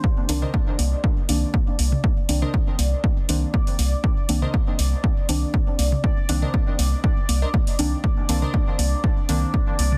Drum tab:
HH |--o---o---o---o-|--o---o---o--oo-|--o---o---o---o-|--o---o---o--oo-|
T2 |---o-----------o|---o------------|---o-----------o|---o------------|
CG |o-o-o-o-o-o-o-o-|o-o-o-o-o-o-o-o-|o-o-o-o-o-o-o-o-|o-o-o-o-o-o-o-o-|
BD |o---o---o---o---|o---o---o---o---|o---o---o---o---|o---o---o---o---|

HH |--o---o---o---o-|
T2 |---o-----------o|
CG |o-o-o-o-o-o-o-o-|
BD |o---o---o---o---|